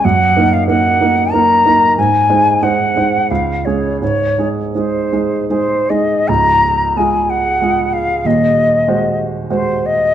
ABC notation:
X:1
M:3/4
L:1/16
Q:1/4=92
K:Db
V:1 name="Flute"
g3 f g4 b4 | a4 g4 f2 d2 | d3 z c4 c2 e2 | b4 a2 g4 f2 |
e6 z2 c2 e2 |]
V:2 name="Grand piano"
G,,2 [B,EB]2 [B,EB]2 [B,EB]2 [B,EB]2 [B,EB]2 | A,,2 [A,Ec]2 [A,Ec]2 [A,Ec]2 D,,2 [A,DA]2 | A,,2 [A,EA]2 [A,EA]2 [A,EA]2 [A,EA]2 [A,EA]2 | [D,,,D,,]4 [A,FA]4 [A,FA]4 |
[E,,,E,,]4 [A,Gc]4 [A,Gc]4 |]